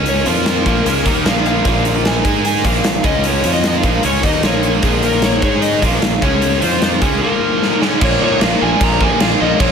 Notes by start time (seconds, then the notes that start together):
Already playing: C#2 C#3 G#3 C#4
0.06 C#5, closed hi-hat
0.25 F2 F3 C4 F4 A#4, closed hi-hat
0.46 snare, closed hi-hat
0.66 A#1 A#2 F3 A#3, kick, closed hi-hat
0.86 C#2 C#3 G#3 C#4, closed hi-hat
1.05 D#2 D#3 A#3 D#4, kick, closed hi-hat
1.25 A#1 A#2 F3 A#3 F5, snare, closed hi-hat
1.46 F5, closed hi-hat
1.65 A#1 A#2 F3 A#3, kick, closed hi-hat
1.85 closed hi-hat
2.05 G#5, snare, closed hi-hat
2.24 G#2 G#3 D#4 G#4, kick, closed hi-hat
2.45 G#5, closed hi-hat
2.64 A#1 A#2 F3 A#3 F5, kick, closed hi-hat
2.84 A#1 A#2 F3, snare, closed hi-hat
3.04 C#2 C#3 G#3 C#4 D#5, kick, closed hi-hat
3.24 C#5, closed hi-hat
3.44 F2 F3 C4 F4, closed hi-hat
3.53 D#5
3.64 snare, closed hi-hat
3.69 D#5
3.78 F5
3.83 A#1 A#2 F3 A#3, kick, closed hi-hat
4.03 C#2 C#3 G#3 C#4 C#5, closed hi-hat
4.22 D#2 D#3 A#3 D#4 D#5, kick, closed hi-hat
4.43 A#1 A#2 F3 A#3 C#5, snare, closed hi-hat
4.63 closed hi-hat
4.82 A#1 A#2 F3 A#3 G#4, kick, closed hi-hat
5.03 A#4, closed hi-hat
5.22 C#5, snare, closed hi-hat
5.42 G#2 G#3 D#4 G#4 C#5, kick, closed hi-hat
5.62 D#5, closed hi-hat
5.81 A#1 A#2 F3 A#3 F5, kick, closed hi-hat
6.02 A#1 A#2 F3 F5, snare, closed hi-hat
6.21 C#2 C#3 G#3 C#4 C#5, kick, closed hi-hat
6.42 closed hi-hat
6.61 F2 F3 C4 F4 C5, closed hi-hat
6.82 C5, snare, closed hi-hat
7.01 C#2 C#3 G#3 C#4 G#4, kick, closed hi-hat
7.21 A#2 F3 A#3 A#4
7.62 snare
7.80 C#3 G#3 C#4, snare
8.00 A#1 A#2 F3 A#3 C#5, kick, crash
8.21 A#2 F3 A#3 C#5
8.41 A#1 A#2 F3 A#3 F5, snare, crash
8.60 A#1 A#2 F3 A#3 G#5
8.80 A#1 A#2 F3 A#3 A#5, kick, crash
9.00 A#2 F3 A#3 G#5, kick
9.20 A#1 A#2 F3 A#3 F5, snare, crash
9.39 A#1 A#2 F3 A#3 D#5
9.60 A#1 A#2 F3 A#3 C#5, kick, crash